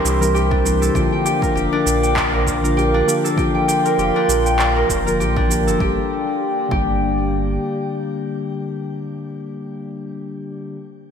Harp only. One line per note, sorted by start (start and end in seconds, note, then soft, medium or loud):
0.00 0.51 D4 loud
0.00 0.34 G4 medium
0.00 0.21 A#4 medium
0.00 1.59 D5 medium
0.00 1.12 G5 medium
0.04 2.53 E4 medium
0.21 0.88 A#4 medium
0.34 0.65 G4 loud
0.51 1.72 D4 loud
0.65 0.95 G4 medium
0.82 1.48 A4 medium
0.95 1.25 G4 loud
1.12 2.02 G5 medium
1.25 1.55 G4 loud
1.42 2.33 A#4 medium
1.55 1.85 G4 loud
1.73 2.94 D4 loud
1.86 2.77 G4 medium
2.03 3.54 G5 medium
2.16 4.01 D5 medium
2.33 2.63 A#4 medium
2.47 4.89 F4 medium
2.64 3.30 A#4 medium
2.77 3.07 G4 loud
2.94 4.15 D4 loud
3.08 3.37 G4 medium
3.24 3.91 A4 medium
3.37 3.68 G4 loud
3.55 4.45 G5 medium
3.68 3.98 G4 loud
3.85 4.76 A#4 medium
3.99 4.29 G4 loud
4.16 5.36 D4 loud
4.29 5.20 G4 medium
4.46 6.01 G5 medium
4.59 6.44 D5 medium
4.76 5.06 A#4 medium
4.90 7.42 F4 medium
5.06 5.73 A#4 medium
5.20 5.50 G4 loud
5.37 8.16 D4 loud
5.50 5.81 G4 medium
5.67 7.87 A4 medium
5.81 6.71 G4 loud
6.72 9.07 G4 medium